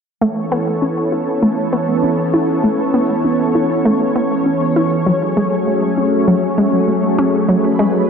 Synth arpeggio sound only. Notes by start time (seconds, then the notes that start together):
0.21 A3
0.52 B3
0.82 C#4
1.12 E4
1.43 A3
1.73 B3
2.03 C#4
2.34 E4
2.64 A3
2.94 B3
3.25 C#4
3.55 E4
3.85 A3
4.16 B3
4.46 C#4
4.76 E4
5.06 F#3
5.37 G#3
5.67 A3
5.98 C#4
6.28 F#3
6.58 G#3
6.88 A3
7.18 C#4
7.49 F#3
7.79 G#3